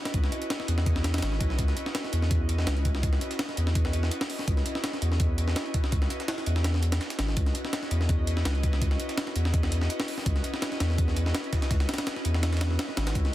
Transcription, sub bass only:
0.14 C#2
0.68 E2
1.22 G#1
1.41 B1
1.59 C#2
2.13 E2
2.67 C#2
3.03 C#2
3.57 E2
4.48 C#2
5.02 E2
5.92 C#2
6.47 E2
7.19 G#1
7.37 C#2
7.91 E2
8.45 C#2
8.81 C#2
9.36 E2
10.26 C#2
10.80 E2
11.71 C#2
12.25 E2
12.97 G#1
13.15 C#2

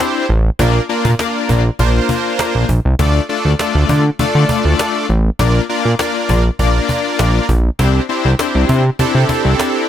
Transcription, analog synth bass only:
0.29 A1
0.59 A#1
1.05 A#2
1.49 A#1
1.79 A#1
2.55 A#1
2.69 A#1
2.85 C2
2.99 D2
3.45 D2
3.75 D2
3.89 D3
4.19 D3
4.35 D3
4.65 D2
5.09 A1
5.39 A#1
5.85 A#2
6.29 A#1
6.59 A#1
7.19 A#1
7.49 A#1
7.79 C2
8.25 C2
8.55 C2
8.69 C3
8.99 C3
9.15 C3
9.45 C2

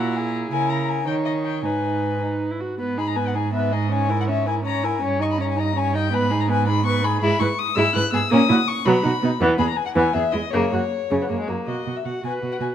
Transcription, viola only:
Already playing: E4
0.52 E4
1.06 D#4
1.64 D#4
2.21 D#4
2.51 E4
2.61 F#4
2.80 B3
2.98 D#4
3.16 B3
3.35 D#4
3.54 B3
3.72 D#4
3.91 C#4
4.09 E4
4.29 C#4
4.47 E4
4.65 C#4
4.84 E4
5.02 C#4
5.20 D#4
5.39 C#4
5.57 D#4
5.76 C#4
5.95 D#4
6.13 B3
6.31 D#4
6.49 B3
6.67 D#4
6.86 B3
7.02 D#4
7.22 G#3
7.40 E4
7.76 G#3
7.94 E4
8.12 B3
8.30 A#3
8.49 E4
8.86 F#3
9.03 D#4
9.22 B3
9.40 E3
9.58 B3
9.96 E3
10.14 B3
10.34 G#3
10.53 C#3
10.73 A#3
11.11 C#3
11.29 A#3
11.48 F#3
11.67 F#4
11.86 F#4
12.05 F#4
12.23 F#4
12.42 F#4
12.60 F#4

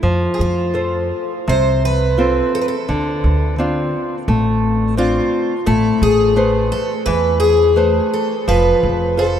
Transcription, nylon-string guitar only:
0.03 F3
0.74 F4 A4 C5
1.48 C3
2.18 C4 F4 A4
2.89 D3
3.58 C4 D4 F4
4.28 A3
4.97 C4 D4 F4
5.66 A3
6.36 A3 B4 C5
7.07 E3
7.76 A3 B4 C5
8.48 F3
9.17 F4 A4 C5

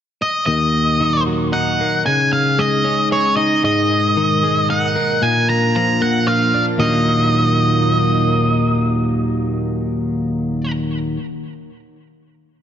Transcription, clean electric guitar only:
0.47 D#2
1.00 D#3
1.26 F#3
1.53 D#4
1.81 A#3
2.07 C#3
2.58 G#3
2.84 C#4
3.11 G#4
3.37 D#4
3.63 G#2
4.17 D#3
4.43 G#3
4.70 D#4
4.96 A#3
5.22 A#2
5.76 F3
6.01 A#3
6.27 F4
6.54 D4
6.78 D#2 A#2 D#3 F#3 A#3
6.82 D#4

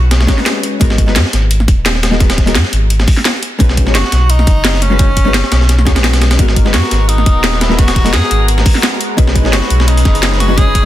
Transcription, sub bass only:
Already playing: B1
0.81 G#1
1.08 F#1
1.16 G#2
1.33 G#1
1.68 D#1
2.47 F#1
2.55 G#2
2.73 G#1
3.60 B1
3.87 G#1
3.95 F#1
4.12 B1
4.47 F#1
5.26 G#1
5.34 F#1
5.52 B1
5.86 D#2
5.96 G#1
6.04 B1
6.39 G#1
6.66 F#1
6.74 G#2
6.91 G#1
7.26 D#1
8.05 F#1
8.13 G#2
8.31 G#1
9.18 B1
9.45 G#1
9.53 F#1
9.70 B1
10.05 F#1

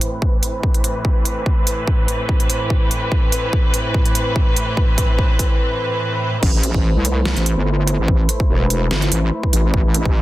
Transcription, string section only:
Already playing: A2 E3 C4 B4
6.43 A3 E4 B4 C5
9.74 E5

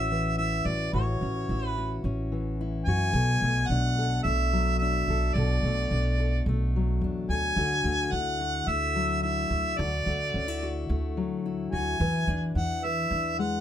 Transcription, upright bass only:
Already playing: A1
0.65 A1
0.93 A1
1.21 A1
1.49 A1
2.04 A1
2.87 F#2
3.13 B1
3.41 B1
3.69 B1
4.25 B1
5.08 B1
5.35 B1
5.63 B1
5.91 B1
6.46 B1
7.01 E2
7.29 D2
7.56 D2
7.84 D2
8.12 D2
8.67 D2
9.50 D2
9.79 D2
10.06 D2
10.34 D2
10.89 D2
11.73 D2
12.00 E2
12.27 E2
12.55 E2
13.11 E2

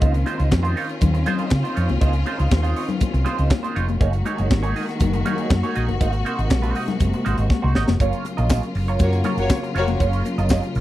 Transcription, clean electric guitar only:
0.01 G#3 D#4 F4 C5
0.13 muted clean electric guitar stroke
0.26 G#3 D#4 F4 C5
0.38 G#3 D#4 F4 C5
0.63 G#3 D#4 F4 C5
0.76 G#3 D#4 F4 C#5
0.88 muted clean electric guitar stroke
1.01 muted clean electric guitar stroke
1.14 muted clean electric guitar stroke
1.26 G#3 D#4 F4 C5
1.39 G#3 D#4 F4 C5
1.63 G#3 D#4 F4 C5
1.75 G#3 D#4 F4 C#5
1.89 muted clean electric guitar stroke
2.01 G#3 D#4 F4 C5
2.13 muted clean electric guitar stroke
2.26 G#3 D#4 F4 C5
2.37 G#3 D#4 F4 C5
2.62 G#3 D#4 F4 C5
2.76 G#3 D#4 F4 C#5
2.88 muted clean electric guitar stroke
3.01 muted clean electric guitar stroke
3.14 muted clean electric guitar stroke
3.25 G#3 D#4 F4 C5
3.38 G#3 D#4 F4 C5
3.63 G#3 D#4 F4 C5
3.75 G#3 D#4 F4 C#5
3.88 muted clean electric guitar stroke
4.01 A#3 D#4 G#4 C#5
4.13 muted clean electric guitar stroke
4.25 A#3 D#4 G#4 C#5
4.37 A#3 D#4 G#4 C#5
4.63 A#3 D#4 G#4 C#5
4.75 A#3 D#4 G#4 D#5
4.88 muted clean electric guitar stroke
5.00 muted clean electric guitar stroke
5.14 muted clean electric guitar stroke
5.26 A#3 D#4 G#4 C#5
5.39 A#3 D#4 G#4 C#5
5.63 A#3 D#4 G#4 C#5
5.75 A#3 D#4 G#4 D#5
5.88 muted clean electric guitar stroke
6.00 A#3 D#4 F#4 C5
6.13 muted clean electric guitar stroke
6.25 A#3 D#4 F#4 C5
6.38 A#3 D#4 F#4 C5
6.62 A#3 D#4 F#4 C5
6.75 A#3 D#4 F#4 D#5
6.88 muted clean electric guitar stroke
7.01 muted clean electric guitar stroke
7.14 muted clean electric guitar stroke
7.25 A#3 D#4 F#4 C5
7.38 A#3 D#4 F#4 C5
7.51 muted clean electric guitar stroke
7.62 A#3 D#4 F#4 C5
7.75 A#3 D#4 F#4 D#5
7.88 muted clean electric guitar stroke
8.01 C#4 F4 A#4 C#5
8.26 muted clean electric guitar stroke
8.37 C#4 F4 A#4 D#5
8.49 C#4 F4 A#4 D#5
8.63 muted clean electric guitar stroke
8.76 muted clean electric guitar stroke
8.88 C#4 F4 A#4 C#5
9.01 muted clean electric guitar stroke
9.12 muted clean electric guitar stroke
9.25 C#4 F4 A#4 C#5
9.37 muted clean electric guitar stroke
9.63 muted clean electric guitar stroke
9.75 C#4 F4 A#4 C#5
9.88 muted clean electric guitar stroke
10.00 C#4 F4 A#4 C#5
10.26 muted clean electric guitar stroke
10.38 C#4 F4 A#4 D#5
10.51 C#4 F4 A#4 D#5
10.63 muted clean electric guitar stroke
10.76 muted clean electric guitar stroke

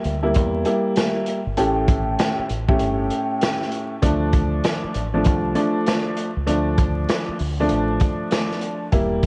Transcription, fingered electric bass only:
0.05 D2
0.36 E2
1.47 G1
1.58 A1
2.39 muted fingered electric bass stroke
2.50 A1
2.81 G1
4.03 D2
4.84 muted fingered electric bass stroke
4.95 A1
5.26 C2
6.37 C#2
6.48 D2
7.29 muted fingered electric bass stroke
7.40 D2
7.71 A1
8.93 E1

